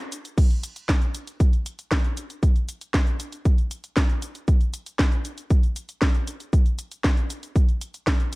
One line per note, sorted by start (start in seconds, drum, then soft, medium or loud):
0.12 closed hi-hat loud
0.12 cabasa medium
0.25 closed hi-hat medium
0.25 cabasa soft
0.38 kick loud
0.38 closed hi-hat medium
0.38 crash medium
0.38 cabasa soft
0.51 closed hi-hat soft
0.51 cabasa soft
0.63 closed hi-hat loud
0.63 cabasa medium
0.76 closed hi-hat medium
0.76 cabasa soft
0.89 kick loud
0.89 snare loud
0.89 clap loud
0.89 closed hi-hat medium
0.89 cabasa soft
1.02 closed hi-hat soft
1.02 cabasa soft
1.15 closed hi-hat loud
1.15 cabasa medium
1.27 closed hi-hat medium
1.27 cabasa soft
1.40 kick loud
1.40 closed hi-hat medium
1.40 cabasa soft
1.53 closed hi-hat soft
1.53 cabasa soft
1.66 closed hi-hat loud
1.66 cabasa medium
1.79 closed hi-hat medium
1.79 cabasa soft
1.91 kick loud
1.91 snare loud
1.91 clap medium
1.91 closed hi-hat medium
1.91 cabasa soft
2.04 closed hi-hat soft
2.04 cabasa soft
2.17 closed hi-hat loud
2.17 cabasa medium
2.30 closed hi-hat medium
2.30 cabasa soft
2.43 kick loud
2.43 closed hi-hat medium
2.43 cabasa soft
2.56 closed hi-hat soft
2.56 cabasa soft
2.69 closed hi-hat loud
2.69 cabasa medium
2.81 closed hi-hat medium
2.81 cabasa soft
2.94 kick loud
2.94 snare loud
2.94 clap medium
2.94 closed hi-hat medium
2.94 cabasa soft
3.07 closed hi-hat soft
3.07 cabasa soft
3.20 closed hi-hat medium
3.20 cabasa medium
3.32 closed hi-hat medium
3.32 cabasa soft
3.45 kick loud
3.45 closed hi-hat medium
3.45 cabasa soft
3.58 closed hi-hat soft
3.58 cabasa soft
3.71 closed hi-hat loud
3.71 cabasa medium
3.84 closed hi-hat medium
3.84 cabasa soft
3.97 kick loud
3.97 snare loud
3.97 clap loud
3.97 closed hi-hat medium
3.97 cabasa soft
4.09 closed hi-hat soft
4.09 cabasa soft
4.22 closed hi-hat loud
4.22 cabasa medium
4.35 closed hi-hat medium
4.35 cabasa soft
4.48 kick loud
4.48 closed hi-hat medium
4.48 cabasa soft
4.61 closed hi-hat soft
4.61 cabasa soft
4.74 closed hi-hat medium
4.74 cabasa medium
4.86 closed hi-hat medium
4.86 cabasa soft
4.99 kick loud
4.99 snare loud
4.99 clap medium
4.99 closed hi-hat medium
4.99 cabasa soft
5.12 closed hi-hat soft
5.12 cabasa soft
5.25 closed hi-hat medium
5.25 cabasa medium
5.38 closed hi-hat medium
5.38 cabasa soft
5.50 kick loud
5.50 closed hi-hat medium
5.50 cabasa soft
5.63 closed hi-hat soft
5.63 cabasa soft
5.76 closed hi-hat medium
5.76 cabasa medium
5.89 closed hi-hat medium
5.89 cabasa soft
6.02 kick loud
6.02 snare loud
6.02 clap medium
6.02 closed hi-hat medium
6.02 cabasa soft
6.15 closed hi-hat soft
6.15 cabasa soft
6.27 closed hi-hat loud
6.27 cabasa medium
6.40 closed hi-hat medium
6.40 cabasa soft
6.53 kick loud
6.53 closed hi-hat medium
6.53 cabasa soft
6.66 closed hi-hat soft
6.66 cabasa soft
6.79 closed hi-hat medium
6.79 cabasa medium
6.92 closed hi-hat medium
6.92 cabasa soft
7.04 kick loud
7.04 snare loud
7.04 clap medium
7.04 closed hi-hat medium
7.04 cabasa soft
7.17 closed hi-hat soft
7.17 cabasa soft
7.30 closed hi-hat medium
7.30 cabasa medium
7.43 closed hi-hat soft
7.43 cabasa soft
7.56 kick loud
7.56 closed hi-hat medium
7.56 cabasa soft
7.69 closed hi-hat soft
7.69 cabasa soft
7.81 closed hi-hat medium
7.81 cabasa medium
7.94 closed hi-hat medium
7.94 cabasa soft
8.07 kick loud
8.07 snare loud
8.07 clap medium
8.07 closed hi-hat soft
8.07 cabasa soft
8.20 closed hi-hat soft
8.20 cabasa soft